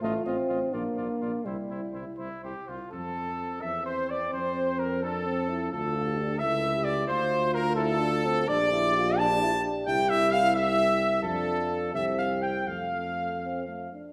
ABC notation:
X:1
M:6/8
L:1/16
Q:3/8=85
K:F
V:1 name="Cornet"
_e2 e2 e2 d2 d2 d2 | c2 c2 c2 c2 c2 c2 | A6 e2 c2 d2 | c4 B2 A6 |
A6 e4 d2 | c4 B2 A6 | d6 a4 z2 | g2 e2 f2 e6 |
A6 e2 f2 g2 | f8- f2 z2 |]
V:2 name="Trumpet"
F2 F2 F2 F2 F2 F2 | E2 E2 E2 E2 G2 F2 | A6 e2 c2 d2 | c4 B2 A6 |
A6 e4 d2 | c4 B2 A6 | d6 a4 z2 | g2 e2 f2 e6 |
A6 e2 f2 g2 | f8- f2 z2 |]
V:3 name="French horn"
F6 D6 | E8- E z3 | C6 C6 | C6 C6 |
F3 G3 A3 G3 | F6 F6 | G12 | G6 G6 |
F6 G6 | A8- A2 z2 |]
V:4 name="Euphonium"
A,2 C4 B,6 | G,6 z6 | z6 C6- | C6 D2 C2 E2 |
F2 F2 D2 E6 | F6 E2 D2 C2 | D2 E2 F2 D2 E2 D2 | E8- E2 z2 |
D6 C6 | A,6 C2 A,2 D2 |]
V:5 name="Tuba" clef=bass
A,,,2 A,,,2 A,,,2 B,,,2 B,,,2 B,,,2 | C,,2 C,,2 C,,2 C,,2 C,,2 C,,2 | F,,6 E,,6 | F,,12 |
D,,6 ^C,,6 | D,,12 | B,,,12 | C,,12 |
F,,6 C,,6 | F,,8- F,,2 z2 |]